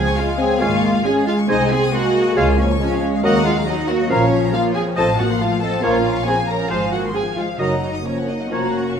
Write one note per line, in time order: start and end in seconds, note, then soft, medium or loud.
0.00 0.16 F3 medium
0.00 0.17 C4 medium
0.00 0.16 G#4 medium
0.00 0.16 G#5 medium
0.07 0.17 C#6 medium
0.16 0.59 G#3 medium
0.16 0.38 G#3 medium
0.16 0.39 F4 medium
0.16 0.39 F5 medium
0.16 0.28 G#5 medium
0.29 0.39 F5 medium
0.38 0.60 C4 medium
0.38 0.60 G#4 medium
0.38 0.51 C#5 medium
0.38 0.62 G#5 medium
0.51 0.62 F5 medium
0.60 0.98 G#1 medium
0.60 1.05 G#3 medium
0.60 0.77 G#3 medium
0.60 1.03 A#3 medium
0.60 1.04 F4 medium
0.60 0.76 C#5 medium
0.60 0.76 F5 medium
0.60 1.05 F5 medium
0.60 0.81 G#5 medium
0.60 0.72 G#5 medium
0.73 0.83 C#6 medium
0.84 0.95 G#5 medium
0.96 1.06 F5 soft
1.04 1.48 G#3 medium
1.04 1.26 C#4 medium
1.04 1.26 G#4 medium
1.04 1.16 C#5 medium
1.04 1.14 G#5 medium
1.17 1.28 F5 soft
1.26 1.47 G#3 medium
1.26 1.34 F4 medium
1.26 1.36 F5 medium
1.26 1.38 G#5 medium
1.39 1.49 C#6 medium
1.48 1.86 C2 medium
1.48 1.70 G#3 medium
1.48 1.65 G#3 medium
1.48 1.92 C4 medium
1.48 1.70 D#4 medium
1.48 1.64 C5 medium
1.48 1.60 D#5 medium
1.48 1.71 D#5 medium
1.48 1.69 G#5 medium
1.48 1.64 G#5 medium
1.61 1.71 G#5 soft
1.70 1.93 C4 medium
1.70 1.93 G#4 medium
1.70 1.93 G#5 medium
1.70 1.82 C6 medium
1.82 1.93 D#6 medium
1.92 2.35 G#3 medium
1.92 2.37 A#3 medium
1.92 2.36 F#4 medium
1.92 2.36 F#5 medium
1.92 2.04 C6 medium
2.04 2.15 G#5 medium
2.16 2.27 D#5 medium
2.26 2.37 G#5 medium
2.36 2.73 C#2 medium
2.36 2.58 G#3 medium
2.36 2.52 G#3 medium
2.36 2.80 A#3 medium
2.36 2.58 F4 medium
2.36 2.52 C#5 medium
2.36 2.48 C#5 medium
2.36 2.52 F5 medium
2.36 2.46 F5 medium
2.36 2.57 G#5 medium
2.49 2.59 F5 medium
2.58 2.78 F3 medium
2.58 2.66 C#4 medium
2.58 2.79 C#5 medium
2.58 2.70 G#5 medium
2.71 2.81 C#6 medium
2.80 3.01 F3 medium
2.80 3.65 G#3 medium
2.80 3.01 C#4 medium
2.80 3.02 C#5 medium
2.80 2.92 G#5 medium
2.93 3.03 F5 medium
3.04 3.14 C#5 medium
3.15 3.25 F5 medium
3.23 3.60 D#2 medium
3.23 3.39 F#3 medium
3.23 3.44 A#3 medium
3.23 3.44 F#4 medium
3.23 3.38 A#4 medium
3.23 3.35 A#4 medium
3.23 3.39 D#5 medium
3.23 3.44 F#5 medium
3.23 3.46 F#5 medium
3.23 3.44 A#5 medium
3.36 3.46 D#5 medium
3.45 3.67 G#3 medium
3.45 3.53 F4 medium
3.45 3.67 F5 medium
3.45 3.57 F#5 medium
3.58 3.68 A#5 medium
3.66 3.76 F#3 medium
3.66 4.10 F#3 medium
3.66 3.88 D#4 medium
3.66 3.76 D#5 medium
3.66 3.79 F#5 medium
3.79 3.89 D#5 medium
3.88 4.10 A#3 medium
3.88 4.10 F#4 medium
3.88 4.00 A#4 medium
3.88 3.96 F#5 medium
4.00 4.11 D#5 medium
4.09 4.46 A#1 medium
4.09 5.83 F3 medium
4.09 4.25 F3 medium
4.09 4.54 F3 medium
4.09 4.53 C#4 medium
4.09 4.25 A#4 medium
4.09 4.21 A#4 medium
4.09 4.53 C#5 medium
4.09 4.25 F5 medium
4.09 4.31 F5 medium
4.09 4.31 A#5 medium
4.22 4.32 C#5 soft
4.32 4.43 F5 medium
4.44 4.54 A#5 soft
4.53 4.75 A#3 medium
4.53 4.75 F4 medium
4.53 4.61 F5 medium
4.53 4.65 F5 medium
4.65 4.75 C#5 soft
4.74 4.97 C4 medium
4.74 4.83 G#4 medium
4.74 4.87 A#4 medium
4.74 4.82 G#5 medium
4.86 4.97 C#5 medium
4.96 5.33 A1 medium
4.96 5.13 F3 medium
4.96 5.19 C4 medium
4.96 5.05 A4 medium
4.96 5.12 C5 medium
4.96 5.12 D#5 medium
4.96 5.07 D#5 medium
4.96 5.17 A5 medium
4.96 5.18 A5 medium
5.08 5.19 F5 soft
5.18 5.40 A#3 medium
5.18 5.26 F#4 medium
5.18 5.40 F#5 medium
5.18 5.29 A5 medium
5.30 5.41 C6 medium
5.40 5.62 A3 medium
5.40 5.61 F4 medium
5.40 5.62 F5 medium
5.40 5.52 A5 soft
5.51 5.62 F5 soft
5.61 5.84 C4 medium
5.61 5.83 A4 medium
5.61 5.73 D#5 medium
5.61 5.83 A5 medium
5.73 5.84 F5 soft
5.83 6.20 A#1 medium
5.83 5.98 F3 medium
5.83 6.27 A#3 medium
5.83 6.27 C#4 medium
5.83 6.26 F4 medium
5.83 5.99 A#4 soft
5.83 5.98 C#5 medium
5.83 5.94 C#5 medium
5.83 6.27 F5 medium
5.83 6.04 A#5 medium
5.95 6.05 F5 soft
6.05 6.16 A#5 soft
6.16 6.27 C#6 soft
6.26 7.59 F3 medium
6.26 6.37 C4 medium
6.26 6.35 G#4 medium
6.26 6.49 G#5 medium
6.26 6.38 A#5 medium
6.38 6.49 F5 soft
6.48 6.70 C#4 soft
6.48 6.70 A#4 medium
6.48 6.60 C#5 soft
6.48 6.70 A#5 medium
6.60 6.71 F5 soft
6.70 7.07 G#1 medium
6.70 6.85 F3 medium
6.70 6.81 G#3 medium
6.70 6.92 F4 medium
6.70 6.85 C5 medium
6.70 6.85 C5 soft
6.70 6.80 C5 soft
6.70 6.92 F5 medium
6.70 6.91 G#5 medium
6.82 6.93 F5 soft
6.91 7.14 A#3 medium
6.91 7.13 F#4 medium
6.91 7.01 F#5 medium
6.91 7.04 G#5 soft
7.04 7.15 C6 soft
7.13 7.24 C4 medium
7.13 7.21 G#4 medium
7.13 7.37 G#5 medium
7.13 7.26 G#5 soft
7.25 7.36 F5 soft
7.36 7.47 G#3 soft
7.36 7.44 F4 medium
7.36 7.48 C5 soft
7.36 7.59 F5 medium
7.49 7.60 F5 soft
7.59 7.97 F#1 medium
7.59 7.75 F#3 soft
7.59 8.05 F#3 soft
7.59 7.81 F#3 medium
7.59 7.80 D#4 medium
7.59 7.75 A#4 soft
7.59 7.75 D#5 soft
7.59 7.81 D#5 medium
7.59 7.70 D#5 soft
7.59 7.81 A#5 medium
7.59 7.82 A#5 soft
7.71 7.82 F#5 soft
7.82 8.04 F#3 soft
7.82 8.04 D#4 medium
7.82 8.05 D#5 soft
7.82 7.94 A#5 soft
7.95 8.05 D#6 soft
8.04 8.27 F3 soft
8.04 8.50 A#3 soft
8.04 8.27 C#4 soft
8.04 8.28 C#5 soft
8.04 8.17 A#5 soft
8.17 8.28 F#5 soft
8.27 8.51 F#3 soft
8.27 8.51 D#4 soft
8.27 8.40 D#5 soft
8.27 8.52 D#5 soft
8.40 8.51 F#5 soft
8.50 8.91 F1 soft
8.50 8.68 F3 soft
8.50 8.97 A#3 medium
8.50 9.00 C#4 soft
8.50 8.98 F#4 medium
8.50 8.68 A#4 soft
8.50 8.62 C#5 soft
8.50 8.68 C#5 soft
8.50 8.99 F#5 soft
8.50 8.73 A#5 soft
8.63 8.75 F5 soft
8.76 8.87 A#5 soft
8.87 8.98 C#6 soft